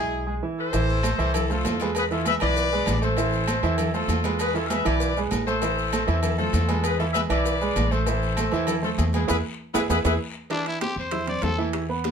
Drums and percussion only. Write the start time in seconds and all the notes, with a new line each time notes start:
0.73 cowbell, high conga, low agogo, long guiro, maracas
0.89 high conga, maracas
1.03 cowbell, high conga, low timbale, low agogo, short guiro, maracas
1.19 low agogo, short guiro, maracas
1.34 cowbell, high conga, low conga, low agogo, long guiro, maracas
1.51 high conga, low conga, maracas
1.65 cowbell, high conga, low timbale, low agogo, short guiro, maracas
1.80 cowbell, high conga, low agogo, short guiro, maracas
1.95 cowbell, high conga, low agogo, long guiro, maracas
2.11 high conga, maracas
2.25 cowbell, high conga, low timbale, low agogo, short guiro, maracas
2.40 cowbell, high conga, low agogo, short guiro, maracas
2.56 cowbell, high conga, long guiro, maracas
2.72 high conga, maracas
2.86 cowbell, high conga, low timbale, low agogo, short guiro, maracas
3.02 short guiro, maracas
3.17 cowbell, high conga, low agogo, long guiro, maracas
3.33 high conga, maracas
3.48 cowbell, high conga, low timbale, low agogo, short guiro, maracas
3.63 high conga, low agogo, short guiro, maracas
3.78 cowbell, high conga, low conga, low agogo, long guiro, maracas
3.94 high conga, maracas
4.09 cowbell, high conga, low timbale, low agogo, short guiro, maracas
4.24 cowbell, high conga, low agogo, short guiro, maracas
4.39 cowbell, high conga, low agogo, long guiro, maracas
4.55 high conga, maracas
4.70 cowbell, high conga, low timbale, low agogo, short guiro, maracas
4.85 cowbell, high conga, low agogo, short guiro, maracas
5.00 cowbell, high conga, long guiro, maracas
5.17 high conga, maracas
5.31 cowbell, high conga, low timbale, low agogo, short guiro, maracas
5.47 high conga, short guiro, maracas
5.62 cowbell, high conga, low agogo, long guiro, maracas
5.78 high conga, maracas
5.93 cowbell, high conga, low timbale, low agogo, short guiro, maracas
6.08 high conga, low agogo, short guiro, maracas
6.23 cowbell, high conga, low conga, low agogo, long guiro, maracas
6.38 high conga, low conga, maracas
6.53 cowbell, high conga, low timbale, low agogo, short guiro, maracas
6.69 cowbell, high conga, low agogo, short guiro, maracas
6.84 cowbell, low agogo, long guiro, maracas
7.00 high conga, maracas
7.14 cowbell, high conga, low timbale, low agogo, short guiro, maracas
7.30 cowbell, high conga, low agogo, short guiro, maracas
7.45 cowbell, high conga, long guiro, maracas
7.61 high conga, maracas
7.76 cowbell, high conga, low timbale, low agogo, short guiro, maracas
7.91 high conga, short guiro, maracas
8.06 cowbell, high conga, low agogo, long guiro, maracas
8.22 high conga, maracas
8.37 cowbell, high conga, low timbale, low agogo, short guiro, maracas
8.52 high conga, low agogo, short guiro, maracas
8.67 cowbell, high conga, low conga, low agogo, long guiro, maracas
8.83 high conga, low conga, maracas
8.98 cowbell, high conga, low timbale, low agogo, short guiro, maracas
9.13 cowbell, high conga, low agogo, short guiro, maracas
9.28 cowbell, high conga, high timbale, long guiro, maracas
9.74 cowbell, high conga, high timbale, long guiro, maracas
9.90 cowbell, high conga, high timbale, long guiro, maracas
10.05 cowbell, high conga, high timbale, long guiro, maracas
10.50 high bongo, high conga, high timbale, long guiro
10.66 high conga, high timbale
10.81 high bongo, high conga, high timbale, low timbale, short guiro
10.97 high conga, short guiro
11.11 high bongo, high conga, low conga, high timbale, long guiro
11.28 high conga, low conga, high timbale
11.42 high bongo, low bongo, high conga, high timbale, low timbale, short guiro
11.58 high conga, short guiro
11.73 high bongo, high timbale, long guiro
11.90 high conga
12.04 high bongo, high conga, high timbale, low timbale, short guiro